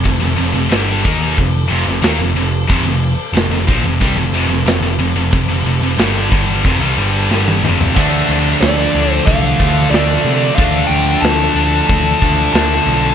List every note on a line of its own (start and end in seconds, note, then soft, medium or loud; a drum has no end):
0.04 0.21 F1 medium
0.04 0.19 F2 medium
0.04 0.19 C3 medium
0.04 kick medium
0.04 crash medium
0.20 0.38 F1 medium
0.20 0.35 F2 medium
0.20 0.36 C3 medium
0.20 snare soft
0.36 0.54 F1 medium
0.36 0.51 F2 medium
0.36 0.52 C3 medium
0.36 crash medium
0.53 0.70 F1 medium
0.53 0.69 F2 medium
0.53 0.69 C3 medium
0.69 1.02 G1 loud
0.69 1.02 G2 medium
0.69 1.02 D3 loud
0.69 1.03 G3 loud
0.69 snare loud
0.69 crash medium
1.03 1.35 D#2 medium
1.03 1.35 D#3 medium
1.03 1.36 A#3 loud
1.03 1.37 D#4 loud
1.03 kick loud
1.03 crash medium
1.35 1.69 F1 medium
1.35 1.62 F2 medium
1.35 1.63 C3 medium
1.35 kick medium
1.35 crash medium
1.68 1.86 F1 loud
1.68 1.85 F2 loud
1.68 1.85 C3 loud
1.68 crash medium
1.86 2.02 F1 medium
1.86 2.03 F2 medium
1.86 2.02 C3 medium
1.86 snare soft
2.02 2.18 D#2 loud
2.02 2.18 D#3 medium
2.02 2.19 A#3 loud
2.02 snare loud
2.02 crash medium
2.19 2.35 F1 medium
2.19 2.35 F2 medium
2.19 2.36 C3 medium
2.35 2.67 F1 medium
2.35 2.63 F2 medium
2.35 2.63 C3 medium
2.35 crash medium
2.68 2.82 F1 medium
2.68 2.84 F2 medium
2.68 2.85 C3 medium
2.68 kick loud
2.68 crash medium
2.83 3.15 F1 medium
2.83 3.13 F2 medium
2.83 3.13 C3 medium
2.88 snare soft
3.03 crash medium
3.33 3.48 F1 medium
3.33 3.50 F2 medium
3.33 3.50 C3 medium
3.33 crash medium
3.37 snare loud
3.49 3.66 F1 medium
3.49 3.68 F2 medium
3.49 3.67 C3 medium
3.67 3.82 A#1 loud
3.67 3.83 A#2 medium
3.67 3.84 F3 loud
3.67 kick loud
3.67 crash medium
3.83 3.99 F1 medium
3.83 4.02 F2 medium
3.83 3.99 C3 medium
4.00 4.15 C2 medium
4.00 4.16 C3 medium
4.00 4.17 G3 loud
4.00 kick loud
4.00 crash medium
4.16 4.32 F1 medium
4.16 4.33 F2 medium
4.16 4.33 C3 medium
4.32 4.48 F1 loud
4.32 4.48 F2 loud
4.32 4.49 C3 loud
4.32 crash medium
4.49 4.64 F1 medium
4.49 4.65 F2 medium
4.49 4.66 C3 medium
4.53 snare soft
4.65 4.81 F1 medium
4.65 4.82 F2 medium
4.65 4.82 C3 medium
4.65 snare loud
4.65 crash medium
4.81 4.98 F1 medium
4.81 4.98 F2 medium
4.81 4.98 C3 medium
4.99 5.15 F1 medium
4.99 5.15 F2 medium
4.99 5.15 C3 medium
4.99 crash medium
5.16 5.31 F1 medium
5.16 5.31 F2 medium
5.16 5.32 C3 medium
5.33 5.47 F1 medium
5.33 5.47 F2 medium
5.33 5.48 C3 medium
5.33 kick medium
5.33 crash medium
5.48 5.64 F1 medium
5.48 5.65 F2 medium
5.48 5.65 C3 medium
5.64 5.80 F1 medium
5.64 5.82 F2 medium
5.64 5.83 C3 medium
5.64 crash medium
5.81 5.97 F1 medium
5.81 5.98 F2 medium
5.81 5.99 C3 medium
5.98 6.29 G1 loud
5.98 6.29 G2 medium
5.98 6.30 D3 loud
5.98 6.31 G3 loud
5.98 snare loud
5.98 crash medium
6.30 6.62 G1 medium
6.30 6.63 G2 medium
6.30 6.63 D3 medium
6.30 6.64 G3 loud
6.30 kick loud
6.30 crash medium
6.64 6.79 F1 medium
6.64 6.80 F2 medium
6.64 6.79 C3 loud
6.64 kick loud
6.64 crash medium
6.80 6.95 C2 loud
6.80 6.96 C3 loud
6.80 6.96 G3 loud
6.96 7.28 G1 medium
6.96 7.28 G2 medium
6.96 7.28 D3 medium
6.96 7.29 G3 loud
6.96 crash medium
7.29 7.60 G1 loud
7.29 7.62 G2 loud
7.29 7.62 D3 medium
7.29 7.62 G3 medium
7.29 snare medium
7.48 high tom medium
7.64 7.94 F1 medium
7.64 7.95 F2 medium
7.64 7.95 C3 medium
7.64 7.96 F3 loud
7.64 mid tom medium
7.81 floor tom medium
7.96 8.20 D2 medium
7.96 8.97 D3 medium
7.96 9.58 F3 loud
7.96 8.96 A3 loud
7.96 8.94 D4 loud
7.96 kick loud
7.96 crash loud
8.29 8.52 D2 medium
8.29 open hi-hat medium
8.61 8.85 D2 loud
8.61 9.12 D5 medium
8.61 snare loud
8.61 open hi-hat medium
8.95 9.18 D2 medium
8.95 9.90 D3 medium
8.95 9.91 A3 medium
8.95 9.91 D4 medium
8.95 open hi-hat medium
9.12 9.26 C5 medium
9.26 9.51 C2 medium
9.26 9.90 F5 loud
9.26 kick loud
9.26 open hi-hat medium
9.59 9.83 D2 loud
9.59 9.91 D3 medium
9.59 9.91 F3 medium
9.59 9.91 A3 medium
9.59 9.90 D4 medium
9.59 kick medium
9.59 open hi-hat medium
9.90 10.15 D2 medium
9.90 10.55 D3 medium
9.90 10.56 F3 medium
9.90 10.56 A3 medium
9.90 10.55 D5 medium
9.90 snare loud
9.90 open hi-hat medium
9.95 10.57 D4 loud
10.25 10.48 C3 medium
10.25 snare soft
10.25 open hi-hat medium
10.55 10.82 D2 medium
10.55 11.54 D3 loud
10.55 12.20 F3 medium
10.55 11.55 A3 medium
10.55 10.90 F5 loud
10.55 kick loud
10.55 open hi-hat medium
10.60 11.55 D4 loud
10.87 11.14 D2 medium
10.87 11.21 G5 loud
10.91 open hi-hat medium
11.21 11.46 D2 loud
11.21 11.86 A5 loud
11.21 snare loud
11.21 open hi-hat medium
11.55 11.79 D2 loud
11.55 12.53 A3 medium
11.55 12.52 D4 loud
11.55 open hi-hat medium
11.60 12.53 D3 medium
11.87 12.13 D2 medium
11.87 12.52 A5 loud
11.87 kick loud
11.87 open hi-hat medium
12.22 12.46 D2 loud
12.22 12.53 D3 medium
12.22 12.53 F3 medium
12.22 12.53 A3 medium
12.22 12.52 D4 medium
12.22 kick medium
12.22 open hi-hat medium
12.53 12.78 D2 loud
12.53 13.15 D3 medium
12.53 13.15 F3 medium
12.53 13.15 A3 medium
12.53 13.15 A5 loud
12.53 snare loud
12.53 open hi-hat medium
12.57 13.15 D4 medium
12.87 13.10 B1 medium
12.87 open hi-hat medium